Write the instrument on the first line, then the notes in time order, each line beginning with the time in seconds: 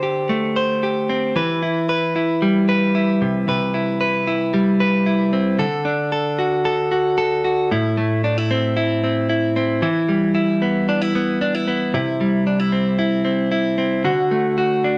clean electric guitar
Already playing: D3 C5
0.03 G4
0.29 A3
0.56 C5
0.83 G4
1.09 C4
1.36 E3 B4
1.63 E4
1.89 B4
2.16 E4
2.42 G3
2.69 B4
2.95 E4
3.22 C3
3.48 C3 B4
3.74 E4
4.01 B4
4.27 E4
4.54 G3
4.80 B4
5.06 E4
5.33 C4
5.59 D3 A4
5.85 D4
6.12 A4
6.39 F#4
6.65 A4
6.92 F#4
7.18 A4
7.44 F#4
7.71 A2 E4
7.97 A3
8.24 D4
8.38 E4
8.51 C4
8.77 E4
9.04 C4
9.29 E4
9.56 C4
9.82 E3 E4
10.09 G3
10.35 E4
10.62 B3
10.89 D4
11.02 E4
11.15 B3
11.41 D4
11.55 E4
11.68 B3
11.94 C3 E4
12.21 G3
12.47 D4
12.60 E4
12.72 C4
12.99 E4
13.25 C4
13.52 E4
13.78 C4
14.04 D3 F#4
14.31 A3
14.58 F#4
14.84 D4